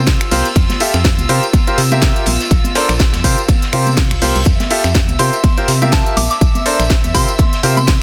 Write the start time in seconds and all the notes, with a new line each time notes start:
Already playing: C3 F4 E6
0.07 kick, snare, closed hi-hat, ride, tambourine
0.21 finger snap, snare, closed hi-hat, tambourine
0.31 C2 F4 G4 A#4 C5, open hi-hat, high conga
0.45 closed hi-hat, tambourine
0.55 F2, kick, closed hi-hat, ride, tambourine
0.70 snare, closed hi-hat, tambourine, high conga
0.80 F4 G4 A4 E5, open hi-hat, ride
0.94 F2, finger snap, snare, closed hi-hat, tambourine
1.04 kick, snare, closed hi-hat, ride, tambourine
1.18 C2, closed hi-hat, tambourine, high conga
1.29 C3 F4 G4 A#4 C5, open hi-hat, ride
1.43 closed hi-hat, tambourine
1.53 kick, closed hi-hat, ride, tambourine, high conga
1.67 F4 G4 A#4 C5, closed hi-hat, ride, tambourine
1.78 C3, snare, open hi-hat, ride
1.91 F4 G4 A#4 E5, closed hi-hat, tambourine, high conga
2.02 kick, snare, closed hi-hat, ride, tambourine
2.16 closed hi-hat, tambourine
2.26 A#1, open hi-hat, ride, high conga
2.40 snare, closed hi-hat, tambourine
2.51 A#1, kick, closed hi-hat, ride
2.64 closed hi-hat, tambourine, high conga
2.75 D4 A4 A#4 C5, snare, open hi-hat, ride
2.89 A#1, finger snap, snare, closed hi-hat, ride, tambourine
3.00 kick, snare, closed hi-hat, ride, tambourine
3.13 F2, snare, closed hi-hat, ride, tambourine, high conga
3.24 C3 F4 G4 A#4 C5, kick, open hi-hat, ride
3.38 closed hi-hat, tambourine
3.48 kick, closed hi-hat, ride, tambourine, reverse cymbal, high conga
3.62 snare, closed hi-hat, tambourine
3.72 C3 F4 G4 A#4 C5, finger snap, open hi-hat, ride
3.86 closed hi-hat, tambourine, high conga
3.97 kick, snare, closed hi-hat, tambourine
4.11 A#1, finger snap, closed hi-hat, tambourine
4.22 C2 F4 G4 A#4 C5, open hi-hat, high conga
4.36 C2, closed hi-hat, tambourine
4.46 F2 E5 E6, kick, closed hi-hat, ride, tambourine
4.60 snare, closed hi-hat, tambourine, high conga
4.70 F4 G4 A4 E5, open hi-hat, ride
4.84 F2, finger snap, snare, closed hi-hat, tambourine
4.95 kick, snare, closed hi-hat, ride
5.08 C2, closed hi-hat, tambourine, high conga
5.19 C3 F4 G4 A#4 C5 C6, open hi-hat, ride
5.33 closed hi-hat, tambourine
5.43 kick, closed hi-hat, ride, tambourine, high conga
5.57 F4 G4 A#4 C5, closed hi-hat, ride, tambourine
5.68 C3, snare, open hi-hat, ride
5.82 F4 G4 A#4 E5, closed hi-hat, tambourine, high conga
5.92 A5, kick, snare, closed hi-hat, ride, tambourine
6.06 closed hi-hat, tambourine
6.17 A#1 D6, open hi-hat, ride, high conga
6.30 D6, snare, closed hi-hat, tambourine
6.41 A#1, kick, closed hi-hat, ride, tambourine
6.55 closed hi-hat, tambourine, high conga
6.66 D4 A4 A#4 C5, open hi-hat, ride
6.79 A#1, finger snap, snare, closed hi-hat, tambourine
6.90 kick, snare, closed hi-hat, ride
7.04 F2, closed hi-hat, tambourine, high conga
7.14 C3 F4 G4 A#4 C5 C6, kick, open hi-hat, ride
7.28 closed hi-hat, tambourine
7.38 kick, closed hi-hat, ride, tambourine, high conga
7.53 snare, closed hi-hat, tambourine
7.63 C3 F4 G4 A#4 C5, open hi-hat, ride
7.77 C6, closed hi-hat, tambourine, high conga
7.87 kick, snare, closed hi-hat, ride